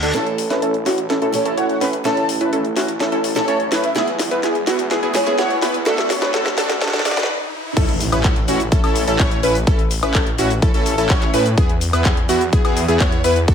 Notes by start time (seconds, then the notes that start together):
Already playing: D2, reverse cymbal
0.03 D4 F#4 A4, closed hi-hat, shaker
0.13 A1 A3 C#4 E4 A4, snare, closed hi-hat, riser
0.27 closed hi-hat
0.38 open hi-hat
0.50 A1 C#4 E4 B4, snare, closed hi-hat
0.62 A1 C#4 E4 A4, closed hi-hat
0.74 closed hi-hat
0.86 A1 C#4 E4 F#4, snare, open hi-hat
0.98 closed hi-hat
1.10 A1 C#4 E4 A4, snare, closed hi-hat
1.22 A1 C#4 E4 A4, closed hi-hat
1.32 A3 C#4 E4 A4 C#5, open hi-hat
1.45 A1 C#4 E4 A4, closed hi-hat
1.57 A1 C#4 E4 C#5 F#5, closed hi-hat
1.69 F#5, closed hi-hat
1.81 A1 C#4 E4 B4, snare, open hi-hat
1.93 closed hi-hat
2.04 A1 A3 C#4 E4 A4 A5, snare, closed hi-hat
2.17 closed hi-hat
2.29 open hi-hat
2.41 A1 C#4 E4 B4, closed hi-hat
2.53 A1 C#4 E4 A4, closed hi-hat
2.65 closed hi-hat
2.76 A1 C#4 E4 F#4, snare, open hi-hat
2.88 closed hi-hat
3.00 A1 C#4 E4 A4, snare, closed hi-hat
3.12 A1 C#4 E4 A4, closed hi-hat
3.24 open hi-hat
3.35 A1 A3 C#4 E4 A4 A5, snare, closed hi-hat
3.48 A1 C#4 E4 C#5, closed hi-hat
3.60 closed hi-hat
3.72 A2 C#4 E4 B4, snare, open hi-hat
3.84 E5, closed hi-hat
3.95 E2 G#3 B3 E4 G#4 E5, snare, closed hi-hat
4.08 closed hi-hat
4.19 snare, open hi-hat
4.31 E2 B3 E4 B4, closed hi-hat
4.43 E2 B3 E4 G#4, snare, closed hi-hat
4.55 closed hi-hat
4.67 E2 B3 E4 F#4, snare, open hi-hat
4.79 closed hi-hat
4.91 E2 B3 E4 G#4, snare, closed hi-hat
5.03 E2 B3 E4 G#4, closed hi-hat
5.13 G#3 B3 E4 G#4 C#5, snare, open hi-hat
5.26 E2 B3 E4 G#4, closed hi-hat
5.38 E2 B3 E4 C#5 F#5, snare, closed hi-hat
5.50 F#5, closed hi-hat
5.62 E2 B3 E4 B4, snare, open hi-hat
5.74 closed hi-hat
5.85 D2 A3 D4 F#4 A4 E5, snare, closed hi-hat
5.98 snare, closed hi-hat
6.10 C#5, snare, open hi-hat
6.22 D2 D4 F#4 B4 C#5, snare, closed hi-hat
6.34 D2 D4 F#4 A4, snare, closed hi-hat
6.46 snare, closed hi-hat
6.57 D2 D4 F#4 A4, snare, open hi-hat
6.70 snare, closed hi-hat
6.81 D2 D4 F#4 A4, snare, closed hi-hat
6.87 snare
6.93 D2 D4 F#4 A4, snare, closed hi-hat
6.99 snare
7.05 D2 D4 F#4 D5, snare, open hi-hat
7.11 snare
7.17 D2 D4 F#4 B4, snare, closed hi-hat
7.23 snare
7.77 A1 C#4 E4 A4, kick, closed hi-hat, crash, impact, shaker
7.89 closed hi-hat
8.01 open hi-hat, shaker
8.12 A1 C#4 E4 B4, closed hi-hat, high woodblock, shaker
8.24 A1 C#4 E4 A4, kick, clap, closed hi-hat, shaker
8.36 closed hi-hat
8.48 A1 C#4 E4 F#4, open hi-hat, shaker
8.60 closed hi-hat, shaker
8.72 A1 C#4 E4 A4, kick, closed hi-hat, shaker
8.84 A1 C#4 E4 A4, closed hi-hat, high woodblock
8.96 open hi-hat, shaker
9.07 A1 C#4 E4 A4, closed hi-hat, shaker
9.19 A1 C#4 E4 C#5, kick, clap, closed hi-hat, shaker
9.31 closed hi-hat
9.43 A1 C#4 E4 B4, open hi-hat, shaker
9.55 closed hi-hat, shaker
9.67 A1 C#4 E4 A4, kick, closed hi-hat, shaker
9.79 closed hi-hat
9.91 open hi-hat, shaker
10.03 A1 C#4 E4 B4, closed hi-hat, high woodblock, shaker
10.14 A1 C#4 E4 A4, kick, clap, closed hi-hat, shaker
10.27 closed hi-hat
10.38 A1 C#4 E4 F#4, open hi-hat, shaker
10.50 closed hi-hat, shaker
10.62 A1 C#4 E4 A4, kick, closed hi-hat, shaker
10.74 A1 C#4 E4 A4, closed hi-hat
10.86 open hi-hat, shaker
10.98 A1 C#4 E4 A4, closed hi-hat, shaker
11.10 A1 C#4 E4 C#5, kick, clap, closed hi-hat, shaker
11.22 clap, closed hi-hat
11.34 A2 C#4 E4 B4, open hi-hat, shaker
11.46 closed hi-hat, shaker
11.57 E2 B3 E4 G#4, kick, closed hi-hat, shaker
11.69 closed hi-hat
11.81 open hi-hat, shaker
11.93 E2 B3 E4 B4, closed hi-hat, high woodblock, shaker
12.05 E2 B3 E4 G#4, kick, clap, closed hi-hat, shaker
12.17 closed hi-hat
12.29 E2 B3 E4 F#4, open hi-hat, shaker
12.41 closed hi-hat, shaker
12.53 E2 B3 E4 G#4, kick, closed hi-hat, shaker
12.65 E2 B3 E4 G#4, closed hi-hat, high woodblock
12.77 open hi-hat, shaker
12.88 E2 B3 E4 G#4, closed hi-hat, shaker
13.00 E2 B3 C#5, kick, clap, closed hi-hat, shaker
13.12 closed hi-hat
13.24 E2 B3 E4 B4, open hi-hat, shaker
13.36 closed hi-hat, shaker
13.48 D2 D4 F#4 A4, kick, closed hi-hat, shaker